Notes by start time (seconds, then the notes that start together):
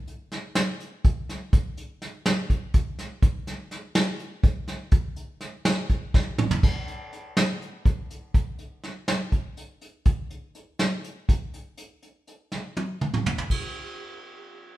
0.07 closed hi-hat
0.32 snare, closed hi-hat
0.55 snare, closed hi-hat
0.80 closed hi-hat
1.05 kick, closed hi-hat
1.29 snare, closed hi-hat
1.53 kick, closed hi-hat
1.77 closed hi-hat
2.02 snare, closed hi-hat
2.26 snare, closed hi-hat
2.50 kick, closed hi-hat
2.74 kick, closed hi-hat
2.99 snare, closed hi-hat
3.22 kick, closed hi-hat
3.47 snare, closed hi-hat
3.71 snare, closed hi-hat
3.95 snare, closed hi-hat
4.19 closed hi-hat
4.43 kick, closed hi-hat
4.68 snare, closed hi-hat
4.91 kick, closed hi-hat
5.16 closed hi-hat
5.41 snare, closed hi-hat
5.65 snare, closed hi-hat
5.90 kick, closed hi-hat
6.14 kick, snare
6.38 mid tom
6.51 floor tom
6.63 kick, crash
6.88 closed hi-hat
7.13 closed hi-hat
7.37 snare, closed hi-hat
7.62 closed hi-hat
7.86 kick, closed hi-hat
8.10 closed hi-hat
8.34 kick, closed hi-hat
8.59 closed hi-hat
8.84 snare, closed hi-hat
9.08 snare, closed hi-hat
9.32 kick, closed hi-hat
9.57 closed hi-hat
9.81 closed hi-hat
10.05 kick, closed hi-hat
10.30 closed hi-hat
10.55 closed hi-hat
10.79 snare, closed hi-hat
11.04 closed hi-hat
11.29 kick, closed hi-hat
11.54 closed hi-hat
11.77 closed hi-hat
12.02 closed hi-hat
12.27 closed hi-hat
12.52 snare
12.77 high tom
13.01 mid tom
13.14 mid tom
13.26 floor tom
13.38 floor tom
13.50 kick, ride